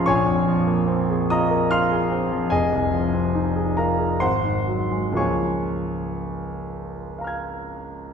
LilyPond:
<<
  \new Staff \with { instrumentName = "Grand piano" } { \time 3/4 \key des \major \tempo 4 = 69 << { r2. | r2. | r2 <f'' bes'' f''' aes'''>4 | } \\ { <des'' aes'' des'''>4. <ees'' bes'' ees'''>8 <f'' c''' f'''>4 | <aes' ees'' aes''>4. <bes' f'' bes''>8 <c'' ges'' c'''>4 | <des'' aes'' des'''>2~ <des'' aes'' des'''>8 r8 | } >> }
  \new Staff \with { instrumentName = "Grand piano" } { \time 3/4 \key des \major bes,,16 f,16 f16 bes16 c'16 aes'16 f'16 bes'16 f'16 aes'16 c'16 f16 | f,,16 c,16 f16 c'16 ees'16 aes'16 f'16 aes'16 aes,,16 aes,16 ges16 aes16 | <des, f bes f' aes'>2. | }
>>